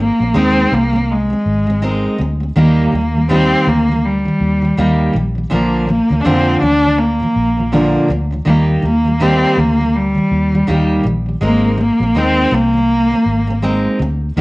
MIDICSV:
0, 0, Header, 1, 4, 480
1, 0, Start_track
1, 0, Key_signature, -3, "major"
1, 0, Tempo, 738007
1, 1668, Time_signature, 4, 2, 24, 8
1, 9372, End_track
2, 0, Start_track
2, 0, Title_t, "Cello"
2, 0, Program_c, 0, 42
2, 0, Note_on_c, 0, 58, 74
2, 243, Note_on_c, 0, 60, 86
2, 252, Note_off_c, 0, 58, 0
2, 477, Note_on_c, 0, 58, 85
2, 487, Note_off_c, 0, 60, 0
2, 720, Note_on_c, 0, 56, 73
2, 730, Note_off_c, 0, 58, 0
2, 1434, Note_off_c, 0, 56, 0
2, 1677, Note_on_c, 0, 58, 79
2, 1896, Note_off_c, 0, 58, 0
2, 1912, Note_on_c, 0, 58, 76
2, 2133, Note_off_c, 0, 58, 0
2, 2153, Note_on_c, 0, 60, 89
2, 2396, Note_on_c, 0, 58, 83
2, 2405, Note_off_c, 0, 60, 0
2, 2635, Note_on_c, 0, 55, 74
2, 2645, Note_off_c, 0, 58, 0
2, 3351, Note_off_c, 0, 55, 0
2, 3591, Note_on_c, 0, 58, 64
2, 3813, Note_off_c, 0, 58, 0
2, 3828, Note_on_c, 0, 58, 68
2, 4035, Note_on_c, 0, 62, 56
2, 4044, Note_off_c, 0, 58, 0
2, 4067, Note_on_c, 0, 60, 78
2, 4077, Note_off_c, 0, 62, 0
2, 4299, Note_off_c, 0, 60, 0
2, 4303, Note_on_c, 0, 62, 92
2, 4540, Note_on_c, 0, 58, 80
2, 4550, Note_off_c, 0, 62, 0
2, 5263, Note_off_c, 0, 58, 0
2, 5515, Note_on_c, 0, 58, 79
2, 5621, Note_off_c, 0, 58, 0
2, 5756, Note_on_c, 0, 58, 75
2, 5995, Note_on_c, 0, 60, 83
2, 6005, Note_off_c, 0, 58, 0
2, 6233, Note_on_c, 0, 58, 83
2, 6243, Note_off_c, 0, 60, 0
2, 6476, Note_on_c, 0, 55, 80
2, 6486, Note_off_c, 0, 58, 0
2, 7191, Note_off_c, 0, 55, 0
2, 7434, Note_on_c, 0, 58, 74
2, 7653, Note_off_c, 0, 58, 0
2, 7678, Note_on_c, 0, 58, 76
2, 7918, Note_on_c, 0, 60, 86
2, 7928, Note_off_c, 0, 58, 0
2, 8160, Note_on_c, 0, 58, 94
2, 8169, Note_off_c, 0, 60, 0
2, 9113, Note_off_c, 0, 58, 0
2, 9352, Note_on_c, 0, 58, 78
2, 9372, Note_off_c, 0, 58, 0
2, 9372, End_track
3, 0, Start_track
3, 0, Title_t, "Steel-string acoustic guitar"
3, 0, Program_c, 1, 25
3, 0, Note_on_c, 1, 56, 44
3, 1, Note_on_c, 1, 60, 48
3, 116, Note_off_c, 1, 56, 0
3, 124, Note_on_c, 1, 56, 40
3, 134, Note_off_c, 1, 60, 0
3, 142, Note_on_c, 1, 60, 45
3, 213, Note_off_c, 1, 56, 0
3, 218, Note_off_c, 1, 60, 0
3, 221, Note_on_c, 1, 56, 66
3, 226, Note_on_c, 1, 60, 73
3, 230, Note_on_c, 1, 63, 77
3, 232, Note_on_c, 1, 70, 86
3, 452, Note_off_c, 1, 56, 0
3, 460, Note_on_c, 1, 56, 46
3, 467, Note_off_c, 1, 60, 0
3, 469, Note_off_c, 1, 63, 0
3, 470, Note_off_c, 1, 70, 0
3, 477, Note_on_c, 1, 60, 61
3, 595, Note_off_c, 1, 56, 0
3, 603, Note_on_c, 1, 56, 44
3, 613, Note_off_c, 1, 60, 0
3, 620, Note_on_c, 1, 60, 51
3, 790, Note_off_c, 1, 56, 0
3, 799, Note_off_c, 1, 60, 0
3, 845, Note_on_c, 1, 56, 40
3, 863, Note_on_c, 1, 60, 41
3, 1031, Note_off_c, 1, 56, 0
3, 1040, Note_off_c, 1, 60, 0
3, 1083, Note_on_c, 1, 56, 42
3, 1103, Note_on_c, 1, 60, 52
3, 1175, Note_off_c, 1, 56, 0
3, 1179, Note_off_c, 1, 60, 0
3, 1182, Note_on_c, 1, 56, 67
3, 1187, Note_on_c, 1, 60, 67
3, 1192, Note_on_c, 1, 63, 70
3, 1195, Note_on_c, 1, 70, 70
3, 1411, Note_off_c, 1, 56, 0
3, 1419, Note_on_c, 1, 56, 60
3, 1427, Note_off_c, 1, 60, 0
3, 1430, Note_off_c, 1, 63, 0
3, 1432, Note_off_c, 1, 70, 0
3, 1438, Note_on_c, 1, 60, 66
3, 1554, Note_off_c, 1, 56, 0
3, 1562, Note_on_c, 1, 56, 34
3, 1572, Note_off_c, 1, 60, 0
3, 1580, Note_on_c, 1, 60, 36
3, 1662, Note_on_c, 1, 51, 68
3, 1663, Note_off_c, 1, 56, 0
3, 1665, Note_off_c, 1, 60, 0
3, 1667, Note_on_c, 1, 55, 66
3, 1668, Note_on_c, 1, 58, 73
3, 1671, Note_on_c, 1, 63, 77
3, 1675, Note_on_c, 1, 67, 74
3, 1892, Note_off_c, 1, 51, 0
3, 1900, Note_on_c, 1, 51, 44
3, 1907, Note_off_c, 1, 55, 0
3, 1908, Note_off_c, 1, 58, 0
3, 1909, Note_off_c, 1, 63, 0
3, 1911, Note_off_c, 1, 67, 0
3, 1919, Note_on_c, 1, 55, 49
3, 2037, Note_off_c, 1, 51, 0
3, 2044, Note_on_c, 1, 51, 39
3, 2054, Note_off_c, 1, 55, 0
3, 2062, Note_on_c, 1, 55, 44
3, 2131, Note_off_c, 1, 51, 0
3, 2134, Note_off_c, 1, 55, 0
3, 2139, Note_on_c, 1, 51, 69
3, 2142, Note_on_c, 1, 55, 78
3, 2145, Note_on_c, 1, 58, 70
3, 2150, Note_on_c, 1, 63, 79
3, 2151, Note_on_c, 1, 67, 75
3, 2375, Note_off_c, 1, 51, 0
3, 2382, Note_on_c, 1, 51, 52
3, 2385, Note_off_c, 1, 55, 0
3, 2387, Note_off_c, 1, 58, 0
3, 2389, Note_off_c, 1, 63, 0
3, 2390, Note_off_c, 1, 67, 0
3, 2400, Note_on_c, 1, 55, 54
3, 2520, Note_off_c, 1, 51, 0
3, 2528, Note_on_c, 1, 51, 42
3, 2538, Note_off_c, 1, 55, 0
3, 2547, Note_on_c, 1, 55, 49
3, 2712, Note_off_c, 1, 51, 0
3, 2722, Note_off_c, 1, 55, 0
3, 2767, Note_on_c, 1, 51, 40
3, 2785, Note_on_c, 1, 55, 48
3, 2952, Note_off_c, 1, 51, 0
3, 2961, Note_off_c, 1, 55, 0
3, 3005, Note_on_c, 1, 51, 39
3, 3022, Note_on_c, 1, 55, 50
3, 3097, Note_off_c, 1, 51, 0
3, 3101, Note_off_c, 1, 55, 0
3, 3105, Note_on_c, 1, 51, 59
3, 3108, Note_on_c, 1, 55, 67
3, 3112, Note_on_c, 1, 58, 73
3, 3114, Note_on_c, 1, 63, 75
3, 3119, Note_on_c, 1, 67, 73
3, 3332, Note_off_c, 1, 51, 0
3, 3339, Note_on_c, 1, 51, 51
3, 3348, Note_off_c, 1, 55, 0
3, 3350, Note_off_c, 1, 58, 0
3, 3351, Note_off_c, 1, 63, 0
3, 3353, Note_off_c, 1, 67, 0
3, 3358, Note_on_c, 1, 55, 60
3, 3473, Note_off_c, 1, 51, 0
3, 3481, Note_on_c, 1, 51, 30
3, 3492, Note_off_c, 1, 55, 0
3, 3500, Note_on_c, 1, 55, 40
3, 3577, Note_on_c, 1, 46, 63
3, 3579, Note_off_c, 1, 51, 0
3, 3581, Note_off_c, 1, 55, 0
3, 3582, Note_on_c, 1, 50, 61
3, 3584, Note_on_c, 1, 53, 74
3, 3586, Note_on_c, 1, 58, 60
3, 3589, Note_on_c, 1, 62, 78
3, 3591, Note_on_c, 1, 70, 83
3, 3811, Note_off_c, 1, 46, 0
3, 3819, Note_on_c, 1, 46, 40
3, 3821, Note_off_c, 1, 50, 0
3, 3825, Note_off_c, 1, 53, 0
3, 3827, Note_off_c, 1, 58, 0
3, 3828, Note_off_c, 1, 62, 0
3, 3829, Note_off_c, 1, 70, 0
3, 3829, Note_on_c, 1, 50, 48
3, 3837, Note_on_c, 1, 53, 48
3, 3956, Note_off_c, 1, 46, 0
3, 3964, Note_on_c, 1, 46, 34
3, 3966, Note_off_c, 1, 50, 0
3, 3973, Note_on_c, 1, 50, 48
3, 3976, Note_off_c, 1, 53, 0
3, 3983, Note_on_c, 1, 53, 47
3, 4055, Note_off_c, 1, 46, 0
3, 4057, Note_off_c, 1, 50, 0
3, 4060, Note_off_c, 1, 53, 0
3, 4063, Note_on_c, 1, 46, 72
3, 4064, Note_on_c, 1, 50, 68
3, 4068, Note_on_c, 1, 53, 73
3, 4069, Note_on_c, 1, 58, 70
3, 4073, Note_on_c, 1, 62, 78
3, 4075, Note_on_c, 1, 70, 72
3, 4289, Note_off_c, 1, 46, 0
3, 4297, Note_on_c, 1, 46, 47
3, 4301, Note_off_c, 1, 50, 0
3, 4307, Note_off_c, 1, 53, 0
3, 4308, Note_off_c, 1, 58, 0
3, 4309, Note_on_c, 1, 50, 57
3, 4310, Note_off_c, 1, 62, 0
3, 4311, Note_off_c, 1, 70, 0
3, 4316, Note_on_c, 1, 53, 57
3, 4434, Note_off_c, 1, 46, 0
3, 4441, Note_on_c, 1, 46, 45
3, 4444, Note_off_c, 1, 50, 0
3, 4452, Note_off_c, 1, 53, 0
3, 4452, Note_on_c, 1, 50, 42
3, 4459, Note_on_c, 1, 53, 43
3, 4628, Note_off_c, 1, 46, 0
3, 4634, Note_off_c, 1, 50, 0
3, 4638, Note_off_c, 1, 53, 0
3, 4682, Note_on_c, 1, 46, 38
3, 4694, Note_on_c, 1, 50, 37
3, 4701, Note_on_c, 1, 53, 43
3, 4869, Note_off_c, 1, 46, 0
3, 4875, Note_off_c, 1, 50, 0
3, 4878, Note_off_c, 1, 53, 0
3, 4924, Note_on_c, 1, 46, 39
3, 4933, Note_on_c, 1, 50, 42
3, 4942, Note_on_c, 1, 53, 49
3, 5014, Note_off_c, 1, 46, 0
3, 5017, Note_off_c, 1, 50, 0
3, 5019, Note_off_c, 1, 53, 0
3, 5021, Note_on_c, 1, 46, 66
3, 5025, Note_on_c, 1, 50, 68
3, 5027, Note_on_c, 1, 53, 70
3, 5029, Note_on_c, 1, 58, 71
3, 5032, Note_on_c, 1, 62, 67
3, 5035, Note_on_c, 1, 70, 81
3, 5250, Note_off_c, 1, 46, 0
3, 5258, Note_on_c, 1, 46, 56
3, 5261, Note_off_c, 1, 50, 0
3, 5267, Note_off_c, 1, 53, 0
3, 5268, Note_off_c, 1, 58, 0
3, 5269, Note_off_c, 1, 62, 0
3, 5269, Note_on_c, 1, 50, 64
3, 5271, Note_off_c, 1, 70, 0
3, 5277, Note_on_c, 1, 53, 59
3, 5396, Note_off_c, 1, 46, 0
3, 5404, Note_on_c, 1, 46, 31
3, 5407, Note_off_c, 1, 50, 0
3, 5414, Note_off_c, 1, 53, 0
3, 5414, Note_on_c, 1, 50, 39
3, 5421, Note_on_c, 1, 53, 35
3, 5493, Note_off_c, 1, 50, 0
3, 5496, Note_on_c, 1, 51, 67
3, 5498, Note_off_c, 1, 53, 0
3, 5500, Note_on_c, 1, 55, 64
3, 5502, Note_on_c, 1, 58, 66
3, 5503, Note_off_c, 1, 46, 0
3, 5507, Note_on_c, 1, 63, 72
3, 5509, Note_on_c, 1, 67, 78
3, 5730, Note_off_c, 1, 51, 0
3, 5738, Note_on_c, 1, 51, 46
3, 5743, Note_off_c, 1, 55, 0
3, 5744, Note_off_c, 1, 58, 0
3, 5747, Note_off_c, 1, 63, 0
3, 5748, Note_off_c, 1, 67, 0
3, 5759, Note_on_c, 1, 55, 53
3, 5874, Note_off_c, 1, 51, 0
3, 5882, Note_on_c, 1, 51, 41
3, 5893, Note_off_c, 1, 55, 0
3, 5901, Note_on_c, 1, 55, 43
3, 5974, Note_off_c, 1, 51, 0
3, 5978, Note_off_c, 1, 55, 0
3, 5982, Note_on_c, 1, 51, 64
3, 5986, Note_on_c, 1, 55, 77
3, 5988, Note_on_c, 1, 58, 78
3, 5993, Note_on_c, 1, 63, 74
3, 5995, Note_on_c, 1, 67, 80
3, 6211, Note_off_c, 1, 51, 0
3, 6219, Note_on_c, 1, 51, 49
3, 6226, Note_off_c, 1, 55, 0
3, 6227, Note_off_c, 1, 58, 0
3, 6229, Note_off_c, 1, 63, 0
3, 6230, Note_off_c, 1, 67, 0
3, 6238, Note_on_c, 1, 55, 54
3, 6353, Note_off_c, 1, 51, 0
3, 6361, Note_on_c, 1, 51, 37
3, 6372, Note_off_c, 1, 55, 0
3, 6380, Note_on_c, 1, 55, 42
3, 6548, Note_off_c, 1, 51, 0
3, 6557, Note_off_c, 1, 55, 0
3, 6600, Note_on_c, 1, 51, 36
3, 6618, Note_on_c, 1, 55, 45
3, 6787, Note_off_c, 1, 51, 0
3, 6796, Note_off_c, 1, 55, 0
3, 6842, Note_on_c, 1, 51, 39
3, 6860, Note_on_c, 1, 55, 57
3, 6932, Note_off_c, 1, 51, 0
3, 6937, Note_off_c, 1, 55, 0
3, 6940, Note_on_c, 1, 51, 62
3, 6945, Note_on_c, 1, 55, 70
3, 6947, Note_on_c, 1, 58, 71
3, 6951, Note_on_c, 1, 63, 63
3, 6954, Note_on_c, 1, 67, 71
3, 7169, Note_off_c, 1, 51, 0
3, 7177, Note_on_c, 1, 51, 53
3, 7185, Note_off_c, 1, 55, 0
3, 7186, Note_off_c, 1, 58, 0
3, 7188, Note_off_c, 1, 63, 0
3, 7190, Note_off_c, 1, 67, 0
3, 7197, Note_on_c, 1, 55, 65
3, 7315, Note_off_c, 1, 51, 0
3, 7323, Note_on_c, 1, 51, 33
3, 7333, Note_off_c, 1, 55, 0
3, 7341, Note_on_c, 1, 55, 37
3, 7418, Note_off_c, 1, 55, 0
3, 7420, Note_on_c, 1, 56, 67
3, 7422, Note_off_c, 1, 51, 0
3, 7426, Note_on_c, 1, 60, 63
3, 7430, Note_on_c, 1, 63, 65
3, 7433, Note_on_c, 1, 70, 74
3, 7652, Note_off_c, 1, 56, 0
3, 7660, Note_on_c, 1, 56, 47
3, 7665, Note_off_c, 1, 60, 0
3, 7668, Note_off_c, 1, 63, 0
3, 7669, Note_off_c, 1, 70, 0
3, 7680, Note_on_c, 1, 60, 53
3, 7797, Note_off_c, 1, 56, 0
3, 7805, Note_on_c, 1, 56, 43
3, 7817, Note_off_c, 1, 60, 0
3, 7824, Note_on_c, 1, 60, 46
3, 7895, Note_off_c, 1, 56, 0
3, 7900, Note_off_c, 1, 60, 0
3, 7903, Note_on_c, 1, 56, 62
3, 7908, Note_on_c, 1, 60, 66
3, 7912, Note_on_c, 1, 63, 80
3, 7916, Note_on_c, 1, 70, 73
3, 8132, Note_off_c, 1, 56, 0
3, 8139, Note_on_c, 1, 56, 57
3, 8147, Note_off_c, 1, 60, 0
3, 8149, Note_off_c, 1, 63, 0
3, 8151, Note_off_c, 1, 70, 0
3, 8158, Note_on_c, 1, 60, 64
3, 8277, Note_off_c, 1, 56, 0
3, 8285, Note_on_c, 1, 56, 41
3, 8296, Note_off_c, 1, 60, 0
3, 8306, Note_on_c, 1, 60, 49
3, 8470, Note_off_c, 1, 56, 0
3, 8480, Note_off_c, 1, 60, 0
3, 8526, Note_on_c, 1, 56, 36
3, 8544, Note_on_c, 1, 60, 46
3, 8710, Note_off_c, 1, 56, 0
3, 8719, Note_off_c, 1, 60, 0
3, 8763, Note_on_c, 1, 56, 55
3, 8783, Note_on_c, 1, 60, 51
3, 8853, Note_off_c, 1, 56, 0
3, 8860, Note_off_c, 1, 60, 0
3, 8861, Note_on_c, 1, 56, 66
3, 8868, Note_on_c, 1, 60, 81
3, 8870, Note_on_c, 1, 63, 74
3, 8874, Note_on_c, 1, 70, 78
3, 9092, Note_off_c, 1, 56, 0
3, 9100, Note_on_c, 1, 56, 55
3, 9107, Note_off_c, 1, 60, 0
3, 9108, Note_off_c, 1, 63, 0
3, 9110, Note_off_c, 1, 70, 0
3, 9118, Note_on_c, 1, 60, 69
3, 9304, Note_off_c, 1, 56, 0
3, 9313, Note_off_c, 1, 60, 0
3, 9346, Note_on_c, 1, 51, 61
3, 9348, Note_on_c, 1, 55, 71
3, 9351, Note_on_c, 1, 58, 73
3, 9372, Note_off_c, 1, 51, 0
3, 9372, Note_off_c, 1, 55, 0
3, 9372, Note_off_c, 1, 58, 0
3, 9372, End_track
4, 0, Start_track
4, 0, Title_t, "Fingered electric bass"
4, 0, Program_c, 2, 33
4, 131, Note_on_c, 2, 34, 72
4, 210, Note_off_c, 2, 34, 0
4, 226, Note_on_c, 2, 39, 82
4, 424, Note_off_c, 2, 39, 0
4, 468, Note_on_c, 2, 36, 84
4, 862, Note_off_c, 2, 36, 0
4, 948, Note_on_c, 2, 32, 83
4, 1342, Note_off_c, 2, 32, 0
4, 1429, Note_on_c, 2, 38, 79
4, 1625, Note_off_c, 2, 38, 0
4, 1667, Note_on_c, 2, 39, 92
4, 1864, Note_off_c, 2, 39, 0
4, 1907, Note_on_c, 2, 39, 84
4, 2301, Note_off_c, 2, 39, 0
4, 2387, Note_on_c, 2, 38, 75
4, 2781, Note_off_c, 2, 38, 0
4, 2866, Note_on_c, 2, 39, 75
4, 3063, Note_off_c, 2, 39, 0
4, 3109, Note_on_c, 2, 39, 79
4, 3305, Note_off_c, 2, 39, 0
4, 3346, Note_on_c, 2, 34, 75
4, 3544, Note_off_c, 2, 34, 0
4, 3586, Note_on_c, 2, 34, 86
4, 3901, Note_off_c, 2, 34, 0
4, 3970, Note_on_c, 2, 38, 82
4, 4049, Note_off_c, 2, 38, 0
4, 4068, Note_on_c, 2, 41, 66
4, 4264, Note_off_c, 2, 41, 0
4, 4306, Note_on_c, 2, 38, 73
4, 4700, Note_off_c, 2, 38, 0
4, 4787, Note_on_c, 2, 34, 81
4, 5180, Note_off_c, 2, 34, 0
4, 5267, Note_on_c, 2, 38, 81
4, 5463, Note_off_c, 2, 38, 0
4, 5506, Note_on_c, 2, 39, 85
4, 5703, Note_off_c, 2, 39, 0
4, 5745, Note_on_c, 2, 39, 71
4, 6139, Note_off_c, 2, 39, 0
4, 6227, Note_on_c, 2, 38, 77
4, 6620, Note_off_c, 2, 38, 0
4, 6708, Note_on_c, 2, 39, 79
4, 6904, Note_off_c, 2, 39, 0
4, 6948, Note_on_c, 2, 39, 80
4, 7144, Note_off_c, 2, 39, 0
4, 7185, Note_on_c, 2, 34, 77
4, 7382, Note_off_c, 2, 34, 0
4, 7423, Note_on_c, 2, 32, 96
4, 7739, Note_off_c, 2, 32, 0
4, 7806, Note_on_c, 2, 34, 73
4, 7886, Note_off_c, 2, 34, 0
4, 7904, Note_on_c, 2, 39, 73
4, 8101, Note_off_c, 2, 39, 0
4, 8144, Note_on_c, 2, 36, 79
4, 8538, Note_off_c, 2, 36, 0
4, 8623, Note_on_c, 2, 32, 79
4, 9017, Note_off_c, 2, 32, 0
4, 9104, Note_on_c, 2, 38, 75
4, 9302, Note_off_c, 2, 38, 0
4, 9343, Note_on_c, 2, 39, 88
4, 9372, Note_off_c, 2, 39, 0
4, 9372, End_track
0, 0, End_of_file